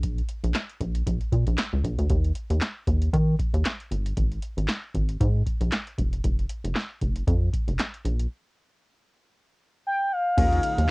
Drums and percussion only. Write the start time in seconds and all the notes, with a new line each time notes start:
0.03 kick, closed hi-hat
0.18 closed hi-hat
0.29 closed hi-hat
0.44 closed hi-hat
0.54 snare, clap, closed hi-hat
0.69 closed hi-hat
0.81 kick, closed hi-hat
0.95 closed hi-hat
1.07 kick, closed hi-hat
1.21 closed hi-hat
1.32 kick, closed hi-hat
1.47 closed hi-hat
1.58 snare, clap, closed hi-hat
1.84 kick, closed hi-hat
1.99 closed hi-hat
2.10 kick, closed hi-hat
2.24 closed hi-hat
2.35 closed hi-hat
2.50 closed hi-hat
2.61 snare, clap, closed hi-hat
2.87 kick, closed hi-hat
3.02 closed hi-hat
3.14 kick, closed hi-hat
3.39 kick, closed hi-hat
3.54 closed hi-hat
3.65 snare, clap, closed hi-hat
3.80 closed hi-hat
3.92 closed hi-hat
4.06 closed hi-hat
4.17 kick, closed hi-hat
4.32 closed hi-hat
4.42 closed hi-hat
4.58 closed hi-hat
4.68 snare, clap, closed hi-hat
4.95 kick, closed hi-hat
5.09 closed hi-hat
5.21 kick, closed hi-hat
5.46 kick, closed hi-hat
5.61 closed hi-hat
5.72 snare, clap, closed hi-hat
5.87 closed hi-hat
5.98 kick, closed hi-hat
6.13 closed hi-hat
6.24 kick, closed hi-hat
6.39 closed hi-hat
6.49 closed hi-hat
6.65 closed hi-hat
6.75 snare, clap, closed hi-hat
7.01 kick, closed hi-hat
7.16 closed hi-hat
7.27 kick, closed hi-hat
7.53 kick, closed hi-hat
7.68 closed hi-hat
7.79 snare, clap, closed hi-hat
7.94 closed hi-hat
8.05 closed hi-hat
8.19 closed hi-hat
10.38 kick, closed hi-hat, crash
10.53 closed hi-hat
10.63 closed hi-hat
10.78 closed hi-hat